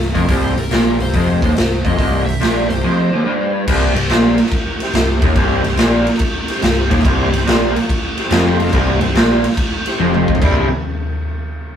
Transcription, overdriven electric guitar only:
0.14 0.27 F2 loud
0.27 0.55 C2 loud
0.56 0.68 C2 medium
0.71 0.99 A#2 loud
0.99 1.11 C2 medium
1.14 1.42 F2 loud
1.42 1.56 D#2 medium
1.57 1.79 C2 medium
1.86 1.98 F2 medium
1.99 2.26 C2 medium
2.27 2.38 C2 medium
2.40 2.69 A#2 loud
2.70 2.81 C2 medium
2.84 3.11 F2 medium
3.12 3.25 D#2 medium
3.25 3.67 G2 loud
3.67 3.94 C2 loud
3.95 4.07 C2 medium
4.10 4.38 A#2 loud
4.95 5.18 C2 medium
5.24 5.36 D#2 loud
5.36 5.63 C2 loud
5.64 5.76 C2 medium
5.79 6.07 A#2 loud
6.63 6.86 C2 medium
6.90 7.04 D#2 medium
7.05 7.32 C2 loud
7.33 7.44 C2 medium
7.47 7.75 A#2 loud
8.31 8.72 F2 loud
8.73 9.00 C2 loud
9.01 9.13 C2 medium
9.15 9.43 A#2 loud
10.00 10.42 F2 loud
10.42 10.65 C2 loud
10.42 10.65 G2 medium
10.42 10.65 C3 medium
10.42 10.65 G3 loud
10.42 10.66 E4 loud

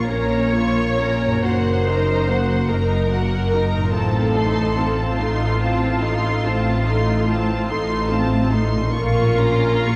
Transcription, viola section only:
0.09 0.56 C#4 soft
0.09 0.56 A#4 soft
0.55 0.96 A#3 soft
0.55 0.97 F4 soft
1.00 1.43 C#4 soft
1.00 1.43 A#4 soft
1.44 1.84 A#3 soft
1.44 1.83 F#4 soft
1.86 2.28 D#4 soft
1.86 2.28 A#4 soft
2.29 2.69 A#3 soft
2.29 2.70 F#4 soft
2.69 3.11 D#4 soft
2.69 3.10 A#4 soft
3.11 3.50 A#3 soft
3.11 3.50 F#4 soft
3.52 3.94 D#4 soft
3.52 3.94 A#4 soft
3.93 4.32 C4 soft
3.93 4.32 F4 soft
4.35 4.77 D#4 soft
4.35 4.77 A4 soft
4.77 5.19 C4 soft
4.77 5.19 F4 soft
5.19 5.61 D#4 soft
5.19 5.61 A4 soft
5.60 6.00 C4 soft
5.60 6.00 F4 soft
6.02 6.45 D#4 soft
6.02 6.45 A4 soft
6.45 6.87 C4 soft
6.45 6.87 F4 soft
6.85 7.27 D#4 soft
6.85 7.28 A4 soft
7.27 7.66 C4 soft
7.27 7.66 F4 soft
7.68 8.10 D#4 soft
7.68 8.10 A4 soft
8.09 8.51 C4 soft
8.09 8.51 F4 soft
8.51 8.94 D#4 soft
8.51 8.94 A4 soft
8.93 9.35 A#3 soft
8.93 9.35 F4 soft
9.37 9.86 C#4 soft
9.37 9.86 A#4 soft
9.86 9.96 A#3 soft
9.86 9.96 F4 soft

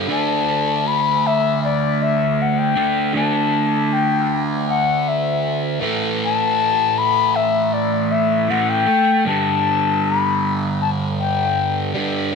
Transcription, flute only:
0.12 0.89 A5 medium
0.87 1.28 B5 loud
1.27 1.63 E5 loud
1.64 2.04 D5 loud
2.03 2.43 E5 medium
2.42 2.60 F#5 medium
2.58 3.15 G5 loud
3.16 3.94 A5 loud
3.93 4.41 G5 medium
4.69 5.10 F#5 medium
5.08 5.83 E5 medium
6.25 7.00 A5 loud
6.98 7.37 B5 loud
7.36 7.75 E5 loud
7.73 8.13 D5 loud
8.12 8.52 E5 medium
8.51 8.71 F#5 medium
8.69 9.27 G5 loud
9.27 10.06 A5 loud
10.04 10.53 B5 medium
10.82 10.90 A5 medium
11.20 11.91 G5 medium

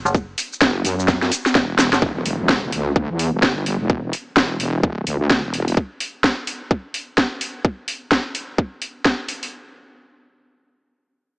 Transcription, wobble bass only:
0.61 0.83 F#1 loud
0.85 1.30 F#2 loud
1.55 1.91 E1 loud
2.02 2.37 E1 medium
2.40 2.71 E1 loud
2.72 3.08 D2 loud
3.10 3.31 E2 loud
3.33 3.41 E1 medium
3.43 3.78 G1 medium
3.80 4.11 E1 loud
4.37 4.58 E1 medium
4.60 5.05 E1 loud
5.07 5.42 D2 medium
5.45 5.76 E1 loud

